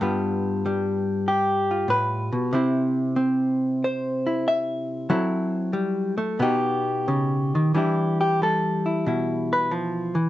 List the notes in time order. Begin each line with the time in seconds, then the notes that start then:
Already playing: A4
0.01 G2 G3 B3 F4
0.66 G3
1.28 G4
1.71 F4
1.88 A2 B4
2.33 B2
2.53 C3 C4 E4
3.16 C4
3.84 C5
4.27 E4
4.48 E5
5.10 F#3 C4 E4 A4
5.73 G3
6.18 A3
6.39 B2 B3 D#4 G4
7.08 C#3
7.55 D#3
7.75 E3 G3 D4 E4 G4
8.21 G4
8.42 G3 A4
8.86 E4
9.06 B2 E4
9.53 B4
9.71 F3
10.15 E3